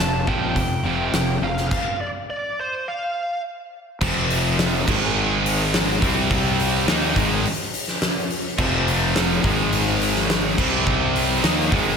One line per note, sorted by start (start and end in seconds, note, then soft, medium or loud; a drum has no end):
0.00 0.26 F1 medium
0.00 0.24 F2 medium
0.00 0.24 C3 medium
0.00 0.26 A5 medium
0.27 0.55 A#1 medium
0.27 0.54 F2 medium
0.27 0.54 C3 medium
0.27 0.55 F3 medium
0.27 1.47 G5 medium
0.27 kick medium
0.56 0.82 F2 medium
0.56 0.84 F2 medium
0.56 0.82 C3 medium
0.56 kick medium
0.56 open hi-hat soft
0.84 1.12 F1 medium
0.84 1.11 F2 loud
0.84 1.12 C3 medium
0.84 1.12 F3 loud
1.13 1.41 F1 medium
1.13 1.39 F2 medium
1.13 1.40 C3 medium
1.13 snare loud
1.13 open hi-hat soft
1.41 1.69 F1 medium
1.41 1.68 F2 medium
1.41 1.68 C3 medium
1.41 1.70 F5 medium
1.57 snare soft
1.71 2.00 F5 loud
1.71 kick loud
1.71 crash medium
2.01 2.08 D5 medium
2.30 2.59 D5 medium
2.59 2.88 C5 medium
2.88 3.41 F5 medium
4.01 4.83 F1 loud
4.01 4.87 F2 medium
4.01 4.87 C3 loud
4.01 4.87 F3 medium
4.01 kick loud
4.01 crash loud
4.30 open hi-hat medium
4.59 snare loud
4.59 open hi-hat medium
4.74 snare soft
4.88 5.98 G#1 loud
4.88 6.01 G#2 medium
4.88 6.01 D#3 medium
4.88 6.02 G#3 loud
4.88 kick loud
4.88 crash loud
5.46 open hi-hat medium
5.74 snare loud
5.74 open hi-hat medium
6.02 6.84 C2 loud
6.02 6.87 C3 loud
6.02 6.87 G3 loud
6.02 6.87 C4 loud
6.02 kick loud
6.02 open hi-hat medium
6.31 kick loud
6.31 open hi-hat medium
6.59 open hi-hat medium
6.87 7.14 D#2 loud
6.87 7.15 D#3 medium
6.87 7.16 A#3 medium
6.87 7.16 D#4 loud
6.87 snare loud
6.87 open hi-hat medium
7.16 7.43 G#1 loud
7.16 7.44 G#2 medium
7.16 7.44 D#3 medium
7.16 7.44 G#3 medium
7.16 kick loud
7.16 open hi-hat medium
7.45 open hi-hat medium
7.74 open hi-hat medium
7.88 snare soft
8.02 snare loud
8.02 open hi-hat medium
8.30 open hi-hat medium
8.58 9.40 F1 loud
8.58 9.43 F2 medium
8.58 9.44 C3 loud
8.58 9.44 F3 loud
8.58 kick loud
8.58 crash loud
8.88 open hi-hat medium
9.16 snare loud
9.16 open hi-hat medium
9.44 10.54 G#1 loud
9.44 10.57 G#2 medium
9.44 10.57 D#3 loud
9.44 10.57 G#3 loud
9.44 kick loud
9.44 open hi-hat medium
9.72 open hi-hat medium
10.01 open hi-hat medium
10.16 snare soft
10.30 snare loud
10.30 open hi-hat medium
10.57 11.40 C2 loud
10.57 11.42 C3 loud
10.57 11.43 G3 loud
10.57 11.43 C4 loud
10.57 kick loud
10.57 crash loud
10.87 kick loud
11.15 open hi-hat medium
11.43 11.70 D#2 loud
11.43 11.71 D#3 medium
11.43 11.71 A#3 medium
11.43 11.71 D#4 loud
11.43 snare loud
11.43 open hi-hat medium
11.72 11.97 G#1 loud
11.72 11.97 G#2 medium
11.72 11.97 D#3 loud
11.72 11.97 G#3 loud
11.72 kick loud
11.72 open hi-hat medium